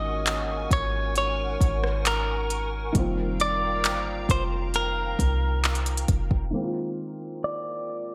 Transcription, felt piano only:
Already playing: D#3 G#3 A#3 C#4 F#4
2.93 D#3 G3 A#3
2.98 C4 F4
6.51 D#3 G#3 A#3
6.56 C4 E4
6.64 F4

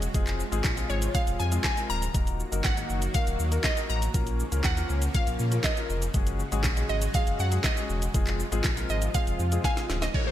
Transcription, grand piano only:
0.14 G#3 C4 F4 G#4
0.52 G#3 C4 F4 G#4
0.77 G#3 C4 F4 G#4
1.14 G#3 C4 F4 G#4
1.52 G#3 C4 F4 G#4
1.77 G#3 C4 F4 A#4
2.14 A#3 D#4 F#4 A#4
2.51 A#3 D#4 F#4 A#4
2.77 A#3 D#4 F#4 A#4
3.14 A#3 D#4 F#4 A#4
3.51 A#3 D#4 F#4 A#4
3.76 A#3 D#4 F#4 A#4
4.14 A#3 C#4 F4 A#4
4.51 A#3 C#4 F4 A#4
4.77 A#3 C#4 F4 A#4
5.14 A#3 C#4 F4 A#4
5.52 A#3 C#4 F4 A#4
5.77 A#3 C#4 F4 A#4
6.14 G#3 C#4 F#4 G#4
6.52 G#3 C#4 F#4 G#4
6.77 G#3 C#4 F#4 G#4
7.14 G#3 C#4 F#4 G#4
7.51 G#3 C#4 F#4 G#4
7.77 G#3 C#4 F#4 G#4
8.14 G#3 C4 F4 G#4
8.52 G#3 C4 F4 G#4
8.77 G#3 C4 F4 A#4
9.14 G#3 C4 F4 G#4
9.52 G#3 C4 F4 G#4
9.77 G#3 C4 F4 G#4
10.14 A#3 D#4 F#4 A#4

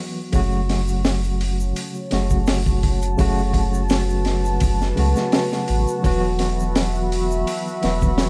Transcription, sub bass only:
0.34 F#1
2.12 F#1
3.19 F#1
4.62 F#1
4.98 C#2
5.69 A1
6.04 E1
7.84 E1

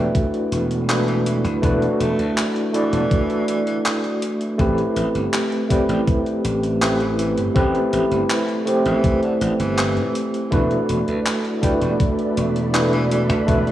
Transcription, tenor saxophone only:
1.08 E3
1.26 E3
2.00 A3
2.74 E3
3.48 E3
3.67 E3
5.71 G3
5.89 G3
7.00 E3
7.19 E3
8.85 E3
9.23 D3
9.41 D3
9.60 E3
11.63 G3
11.82 G3
12.93 E3
13.11 E3

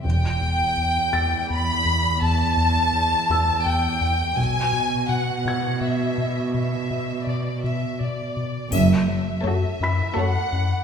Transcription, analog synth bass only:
0.05 E2
0.41 E2
0.77 E2
1.13 E2
1.50 E2
1.85 E2
2.22 E2
2.57 E2
2.93 E2
3.30 E2
3.66 E2
4.01 E2
4.37 B2
4.73 B2
5.09 B2
5.45 B2
5.81 B2
6.18 B2
6.54 B2
6.91 B2
7.27 B2
7.64 B2
8.01 B2
8.37 B2
8.72 F#2
9.08 F#3
9.44 F#2
9.80 F#2
10.16 F#2
10.52 F#2

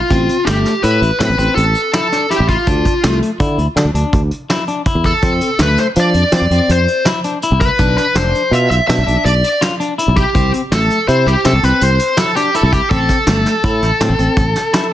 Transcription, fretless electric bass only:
0.11 A1
0.47 G1
0.84 A2
1.02 A1
1.20 A2
1.30 A1
1.39 A1
1.57 A1
2.40 A1
2.67 D2
3.04 C2
3.40 D3
3.58 D2
3.76 D3
3.85 D2
3.94 D2
4.13 D2
4.95 E2
5.23 F2
5.59 D2
5.96 F3
6.14 F2
6.32 F3
6.41 F2
6.50 F2
6.69 F2
7.52 C2
7.79 B1
8.15 F1
8.51 B2
8.70 B1
8.89 B2
8.98 B1
9.08 B1
9.25 B1
10.08 B1
10.35 C2
10.72 A1
11.08 C3
11.26 C2
11.45 C3
11.53 C2
11.63 C2
11.82 C2
12.63 C2
12.91 A1
13.27 G1
13.64 A2
13.82 A1
14.01 A2
14.09 A1
14.19 A1
14.37 A1

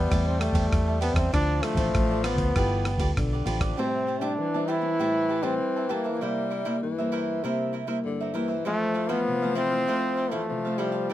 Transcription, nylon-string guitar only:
0.11 A2 G3 C4 E4
0.55 G3 C4 E4
0.73 E3
1.02 G3 C4 E4
1.33 D3 F3 C4 E4
1.77 F3 C4 E4
1.94 A2
2.24 F3 C4 E4
2.55 G3 B3 F4 A4
2.99 B3 F4 A4
3.17 D3
3.46 B3 F4 A4
3.78 A2 G3 C4 E4
4.21 G3 C4 E4
4.39 E3
4.54 G3 C4 E4
4.81 G3 C4 E4
4.99 A2 G3 C4 E4
5.43 G3 C4 E4
5.60 E3
5.90 G3 C4 E4
6.22 C3 G3 A#3 E4
6.65 G3 A#3 E4
6.83 G2
6.99 G3 A#3 E4
7.43 C3 G3 A#3 E4
7.87 G3 A#3 E4
8.05 G2
8.35 G3 A#3 E4
8.66 F2 E3 A3 C4
9.10 E3 A3 C4
9.28 C3
9.43 E3 A3 C4
9.71 E3 A3 C4
9.89 F2 A3 C4
10.33 E3 A3 C4
10.51 C3
10.67 A3 C4

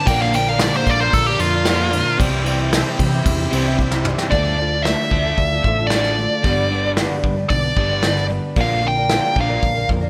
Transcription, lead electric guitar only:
0.07 G5
0.22 F5
0.36 G5
0.49 F5
0.62 D5
0.77 C5
0.89 D5
1.00 C5
1.14 A4
1.26 G4
1.40 F4
4.31 D5
4.82 E5
5.87 D5
7.49 D5
8.61 F5
8.88 G5
9.41 F5

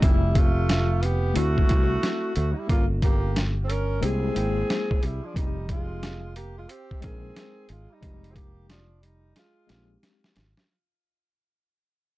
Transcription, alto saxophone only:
0.04 E4
0.38 F4
1.05 G4
1.38 F#4
2.38 F#4
2.54 D#4
2.59 E4
2.72 F4
3.05 G4
3.67 A4
3.72 A#4
4.06 G#4
5.05 E4
5.26 D4
5.38 D#4
5.72 F4
6.37 G4
6.59 F4
6.71 G4
7.05 G#4
7.72 F4
7.94 D#4
8.34 G#4
8.38 G4
8.72 D4
9.05 D#4
9.39 F4

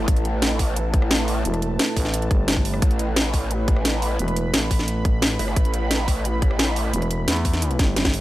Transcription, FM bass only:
1.45 E1
1.96 A1
2.31 G1
4.19 E1
4.54 A1
6.94 E1
7.28 E2
7.79 G1

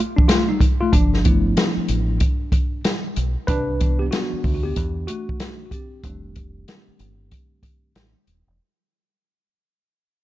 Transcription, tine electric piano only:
0.17 F3 D4
0.28 A3 F4
0.49 G3 D#4
0.81 A3 F4
0.93 F3 D4
1.25 F3 A3 B3 E4
3.47 D4 B4
3.80 E3 B3 D4
3.99 B3 G4
4.11 B3 F#4
4.54 F#4
4.63 B3 G4
5.07 A3 F#4
5.66 F#4
5.71 C4 G4
6.04 D#3 G3 A3 D4

